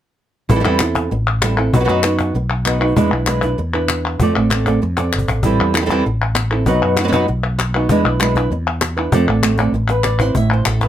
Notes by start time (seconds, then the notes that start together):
0.49 A1 E3 G3 C4 E4 A4, cajon bass
0.56 G3 C4 E4 A4
0.60 G3 C4 E4 A4
0.64 E2 E3 G3 C4 E4 A4
0.79 C4 E4 A4, cajon slap, clap
0.95 cajon bass, cajon slap
1.11 A1, muted nylon-string guitar stroke, cajon slap
1.27 cajon slap
1.42 G3 C4 E4 A4, cajon slap, clap
1.57 C4 E4 A4
1.73 B1 B2 F#3 B3 D#4 F#4 B4, cajon bass
1.79 F#3 B3 D#4 F#4 B4
1.84 F#2 F#3 B3 D#4 F#4 B4
1.89 B2 F#3 B3 D#4 F#4 B4
2.03 B3 D#4 F#4 B4, cajon slap, clap
2.19 cajon bass, cajon slap
2.34 B1, muted nylon-string guitar stroke, cajon slap
2.65 B3 D#4 F#4 B4, cajon slap, clap
2.80 B3 D#4 F#4 B4
2.96 E2 E3 G#3 D4 E4 B4, cajon bass
3.11 B1 E4 B4
3.27 G#3 D4 E4 B4, cajon slap, clap
3.42 D4 E4 B4, cajon bass, cajon slap
3.58 E2, muted nylon-string guitar stroke, cajon slap
3.74 D4 E4 B4
3.88 cajon slap, clap
4.20 F2 F3 A3 C4 A4 D5, cajon bass
4.36 A1 C4 A4 D5
4.50 A3 C4 A4 D5, cajon slap, clap
4.66 C4 A4 D5, cajon bass, cajon slap
4.82 F2, muted nylon-string guitar stroke, cajon slap
4.97 C4 A4 D5, cajon slap
5.13 G1, clap
5.18 cajon bass
5.28 A1, cajon bass
5.43 A1 E3 G3 C4 E4 A4, cajon bass
5.60 E2
5.74 C4 E4 A4, cajon slap, clap
5.81 G3 C4 E4 A4
5.86 G3 C4 E4 A4, cajon bass, cajon slap
5.90 E3 G3 C4 E4 A4
6.05 A1, muted nylon-string guitar stroke, cajon slap
6.35 cajon slap, clap
6.51 C4 E4 A4
6.66 B1 B2 F#3 B3 D#4 F#4 B4, cajon bass
6.82 F#2
6.97 F#3 B3 D#4 F#4 B4, cajon slap, clap
7.03 F#3 B3 D#4 F#4 B4
7.08 F#3 B3 D#4 F#4 B4
7.12 B2 F#3 B3 D#4 F#4 B4, cajon bass
7.28 B1, muted nylon-string guitar stroke, cajon slap
7.59 cajon slap, clap
7.75 B3 D#4 F#4 B4
7.89 E2 E3 G#3 D4 E4 B4, cajon bass
8.05 B1 D4 E4 B4
8.20 G#3 D4 E4 B4, cajon slap, clap
8.35 D4 E4 B4, cajon bass, cajon slap
8.50 E2, muted nylon-string guitar stroke, cajon slap
8.66 cajon slap
8.81 cajon slap, clap
8.97 D4 E4 B4
9.12 F2 F3 A3 C4 A4 D5, cajon bass
9.28 A1 C4 A4 D5
9.43 A3 C4 A4 D5, cajon slap, clap
9.58 C4 A4 D5, cajon bass, cajon slap
9.72 A1, muted nylon-string guitar stroke, cajon slap
9.89 B4, cajon slap
10.03 D5, cajon slap, clap
10.19 C4 E4 B4 C5, cajon bass
10.34 A1 A2 E5, cajon bass
10.53 C5
10.65 A1 A4, cajon slap, clap
10.81 B4, cajon bass, cajon slap